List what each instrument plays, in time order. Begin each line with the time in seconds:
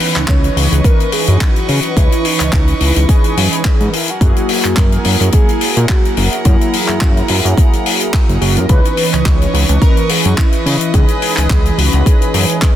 Already playing: analog polysynth E3 C#4 D#4 B4, analog synth lead B4, violin section B4 D#5 C#6
0.00 open hi-hat
0.16 analog synth bass C#2, clap, closed hi-hat
0.28 analog synth bass C#2, analog synth lead C#5, kick, clap, closed hi-hat
0.44 closed hi-hat
0.57 analog synth bass C#2, open hi-hat
0.72 analog synth bass C#2, closed hi-hat
0.84 analog polysynth E3 C#4 D#4 B4, analog synth lead A#4, kick, closed hi-hat
1.00 closed hi-hat
1.12 analog synth lead G#4, open hi-hat
1.27 analog synth bass F#2, closed hi-hat
1.41 analog synth lead F#4, kick, clap, closed hi-hat
1.56 closed hi-hat
1.68 analog synth bass C#3, open hi-hat
1.83 closed hi-hat
1.96 analog synth bass C#2, analog polysynth E3 C#4 D#4 B4, analog synth lead E4, kick, closed hi-hat
2.12 closed hi-hat
2.25 analog synth lead D#4, open hi-hat
2.40 analog synth bass C#2, clap, closed hi-hat
2.53 analog synth bass C#2, kick, clap, closed hi-hat
2.68 closed hi-hat
2.80 analog synth bass C#2, analog synth lead E4, open hi-hat
2.96 analog synth bass C#2, closed hi-hat
3.08 analog polysynth E3 C#4 D#4 B4, analog synth lead G#4, kick, closed hi-hat
3.24 closed hi-hat
3.37 analog synth bass F#2, open hi-hat
3.53 closed hi-hat
3.65 kick, clap, closed hi-hat
3.80 analog synth bass G#2, closed hi-hat
3.93 analog synth lead E4, violin section A#4 F#5 G#5, open hi-hat
4.08 analog synth lead F#4, closed hi-hat
4.20 analog synth bass F#2, analog polysynth F#3 A#3 E4 G#4, kick, closed hi-hat
4.36 closed hi-hat
4.49 open hi-hat
4.64 analog synth bass F#2, clap, closed hi-hat
4.77 analog synth bass F#2, analog synth lead A#4, kick, clap, closed hi-hat
4.92 closed hi-hat
5.05 analog synth bass F#2, open hi-hat
5.21 analog synth bass F#2, closed hi-hat
5.32 analog polysynth F#3 A#3 E4 G#4, analog synth lead G#4, kick, closed hi-hat
5.49 closed hi-hat
5.61 open hi-hat
5.77 analog synth bass A#2, closed hi-hat
5.89 analog synth lead F#4, kick, clap, closed hi-hat
6.05 closed hi-hat
6.17 analog synth bass F#1, violin section A#5, open hi-hat
6.33 closed hi-hat
6.45 analog synth bass F#2, analog polysynth F#3 A#3 E4 G#4, analog synth lead E4, kick, closed hi-hat
6.61 closed hi-hat
6.73 open hi-hat
6.88 analog synth bass F#2, clap, closed hi-hat
7.01 analog synth bass F#2, kick, clap, closed hi-hat
7.17 closed hi-hat
7.28 analog synth bass F#2, open hi-hat
7.45 analog synth bass F#2, closed hi-hat
7.57 analog polysynth F#3 A#3 E4 G#4, kick, closed hi-hat
7.73 closed hi-hat
7.86 open hi-hat
8.00 closed hi-hat
8.14 kick, clap, closed hi-hat
8.29 analog synth bass F#1, closed hi-hat
8.41 analog synth bass F#1, analog synth lead F#4, open hi-hat
8.57 analog synth bass F#2, analog synth lead A#4, closed hi-hat
8.69 analog synth bass C#2, analog polysynth E3 C#4 D#4 B4, analog synth lead B4, violin section B4 D#5 C#6, kick, closed hi-hat
8.85 closed hi-hat
8.97 open hi-hat
9.13 analog synth bass C#2, clap, closed hi-hat
9.19 analog synth lead D#5
9.25 analog synth bass C#2, analog synth lead C#5, kick, clap, closed hi-hat
9.42 closed hi-hat
9.54 analog synth bass C#2, open hi-hat
9.69 analog synth bass C#2, closed hi-hat
9.81 analog polysynth E3 C#4 B4 D#5, analog synth lead A#4, kick, closed hi-hat
9.97 closed hi-hat
10.09 analog synth lead G#4, open hi-hat
10.25 analog synth bass F#2, closed hi-hat
10.38 analog synth lead E4, kick, clap, closed hi-hat
10.52 closed hi-hat
10.66 analog synth bass C#3, open hi-hat
10.81 closed hi-hat
10.93 analog synth bass C#2, analog polysynth E3 C#4 D#4 B4, analog synth lead G#4, violin section B5, kick, closed hi-hat
11.08 closed hi-hat
11.22 analog synth lead G#4, open hi-hat
11.37 analog synth bass C#2, clap, closed hi-hat
11.50 analog synth bass C#2, kick, clap, closed hi-hat
11.65 closed hi-hat
11.78 analog synth bass C#2, analog synth lead F#4, open hi-hat
11.93 analog synth bass C#2, closed hi-hat
12.05 analog polysynth E3 C#4 D#4 B4, analog synth lead G#4, kick, closed hi-hat
12.22 closed hi-hat
12.34 analog synth bass F#2, open hi-hat
12.49 closed hi-hat
12.62 kick, clap, closed hi-hat